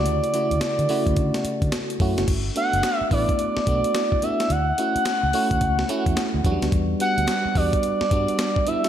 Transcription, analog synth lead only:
0.00 1.72 D5 medium
2.57 2.97 F#5 loud
2.97 3.08 E5 loud
3.12 4.25 D5 loud
4.23 4.53 E5 medium
4.51 6.45 F#5 loud
7.01 7.58 F#5 loud
7.57 8.69 D5 loud
8.68 8.89 E5 medium

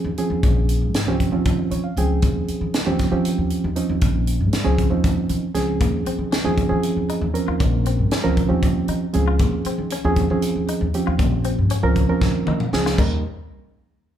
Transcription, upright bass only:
0.04 0.16 D#2 medium
0.30 0.41 D#2 medium
0.43 0.83 A#1 medium
0.81 1.03 G#2 medium
1.07 1.29 C#2 medium
1.33 1.65 D#2 medium
1.71 1.82 D#3 medium
1.97 2.18 C#2 medium
2.23 2.44 D#2 medium
2.49 muted upright bass stroke soft
2.61 2.72 D#3 medium
2.87 3.08 D#2 medium
3.12 3.23 D#3 medium
3.38 3.49 D#2 medium
3.64 3.75 D#2 medium
3.89 4.00 D#2 medium
4.02 4.42 A#1 medium
4.40 4.62 G#2 medium
4.66 4.87 C#2 medium
4.91 5.23 D#2 medium
5.30 5.41 D#3 medium
5.54 5.77 C#2 medium
5.81 6.02 D#2 medium
6.06 muted upright bass stroke soft
6.18 6.30 D#3 medium
6.44 6.66 D#2 medium
6.71 6.82 D#3 medium
6.97 7.07 D#2 medium
7.21 7.33 D#2 loud
7.48 7.59 D#2 medium
7.60 8.00 A#1 loud
7.99 8.20 G#2 medium
8.25 8.46 C#2 medium
8.50 8.82 D#2 medium
8.88 8.99 D#3 medium
9.15 9.36 C#2 loud
9.40 9.61 D#2 medium
9.66 muted upright bass stroke soft
9.78 9.89 D#3 medium
10.04 10.26 D#2 loud
10.30 10.41 D#3 medium
10.56 10.66 D#2 medium
10.81 10.92 D#2 medium
11.07 11.18 D#2 loud
11.19 11.60 A#1 loud
11.58 11.80 G#2 medium
11.83 12.05 C#2 medium
12.09 12.41 D#2 medium
12.47 12.58 D#3 medium
12.73 12.94 C#2 loud
12.98 13.22 D#2 medium

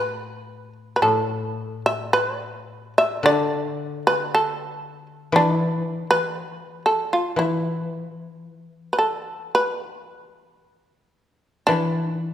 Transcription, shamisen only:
0.00 0.73 B4 medium
0.96 1.02 B4 soft
1.02 1.81 A4 medium
1.86 2.12 E5 medium
2.13 2.38 B4 medium
2.38 2.93 D5 medium
2.98 3.23 E5 medium
3.26 4.02 D5 medium
4.07 4.31 B4 medium
4.35 5.06 A4 medium
5.36 5.57 D4 medium
5.57 6.06 E4 medium
6.11 6.82 B4 medium
6.86 7.10 A4 medium
7.13 7.37 F4 medium
7.39 8.96 E4 medium
8.93 8.98 B4 soft
8.99 9.51 A4 medium
9.55 11.65 B4 medium
11.67 12.04 D4 medium
12.04 12.27 D#4 medium
12.27 12.34 E4 medium

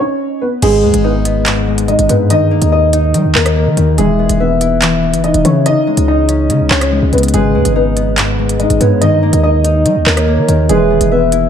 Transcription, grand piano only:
0.00 0.39 C#4 medium
0.00 0.39 C#5 medium
0.41 0.62 B3 medium
0.41 0.61 B4 medium
0.62 1.02 G#3 medium
0.62 1.02 G#4 loud
1.04 1.85 B3 medium
1.04 1.84 B4 medium
1.88 2.08 D#4 medium
1.88 2.08 D#5 medium
2.09 2.29 B3 medium
2.09 2.29 B4 medium
2.30 2.70 D#4 medium
2.30 2.70 D#5 loud
2.72 3.32 D#4 medium
2.72 3.31 D#5 medium
3.35 3.95 A#3 medium
3.35 3.94 A#4 medium
3.98 4.38 G#3 medium
3.98 4.37 G#4 loud
4.40 5.20 B3 medium
4.40 5.20 B4 medium
5.24 5.44 D#4 medium
5.24 5.44 D#5 medium
5.45 5.65 C#4 medium
5.45 5.65 C#5 medium
5.66 6.06 D#4 medium
5.66 6.05 D#5 loud
6.08 6.67 D#4 medium
6.08 6.67 D#5 medium
6.71 7.11 C#4 medium
6.71 7.10 C#5 medium
7.13 7.33 B3 medium
7.13 7.32 B4 medium
7.34 7.74 G#3 medium
7.34 7.73 G#4 loud
7.76 8.56 B3 medium
7.76 8.56 B4 medium
8.60 8.80 D#4 medium
8.60 8.79 D#5 medium
8.81 9.01 B3 medium
8.81 9.00 B4 medium
9.01 9.41 D#4 medium
9.01 9.41 D#5 loud
9.43 10.03 D#4 medium
9.43 10.03 D#5 medium
10.06 10.66 A#3 medium
10.06 10.66 A#4 medium
10.69 11.09 G#3 medium
10.69 11.09 G#4 loud
11.12 11.49 B3 medium
11.12 11.49 B4 medium

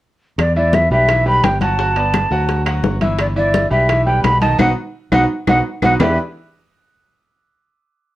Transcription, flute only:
0.39 0.55 D5 medium
0.57 0.76 D5 medium
0.74 0.91 E5 medium
0.92 1.24 E5 medium
1.27 1.45 B5 loud
1.44 1.61 G5 medium
1.61 2.62 A5 loud
3.20 3.26 D5 medium
3.37 3.69 D5 medium
3.71 4.04 E5 medium
4.06 4.23 G5 medium
4.24 4.40 B5 loud
4.41 4.58 A5 medium
4.60 4.71 F#5 medium
5.13 5.24 F#5 loud
5.49 5.59 F#5 medium
5.83 5.94 F#5 medium
6.01 6.17 E5 medium

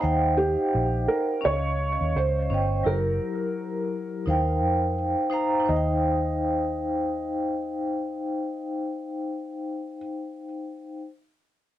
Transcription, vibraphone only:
0.00 1.28 D#4 medium
0.00 1.28 C5 medium
0.00 0.22 D#5 medium
0.00 1.29 F5 medium
0.00 0.21 F#5 medium
0.04 1.30 G5 loud
1.41 2.37 C#4 medium
1.41 2.38 C#5 medium
1.41 2.39 D#5 medium
1.45 2.39 F5 medium
2.50 2.81 C#4 medium
2.50 2.82 C5 medium
2.50 2.83 D#5 medium
2.54 2.84 G5 medium
2.83 4.11 F#3 medium
2.83 4.11 E4 medium
2.83 4.12 G4 medium
2.83 4.13 A#4 medium
4.26 5.21 D#4 medium
4.26 5.22 C5 medium
4.26 5.22 F5 medium
4.30 5.23 G5 medium
5.30 5.59 D#4 medium
5.30 5.63 C5 medium
5.30 5.64 F5 medium
5.34 5.65 A#5 loud
5.60 9.92 D#4 medium
5.66 9.95 C5 medium
5.71 9.97 F5 medium
5.76 10.00 G5 medium

